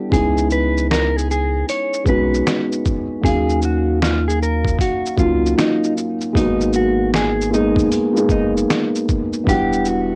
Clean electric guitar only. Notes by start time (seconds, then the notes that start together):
0.13 G#4
0.52 B4
0.91 A#4
1.17 G#4
1.31 G#4
1.70 C#5
2.09 B4
3.25 G#4
3.65 F#4
4.03 F4
4.28 G#4
4.43 A#4
4.81 F#4
5.19 F4
5.58 D#4
6.36 D#4
6.76 F#4
7.15 G#4
7.54 D#4
8.32 D#4
9.49 G4
9.88 F#4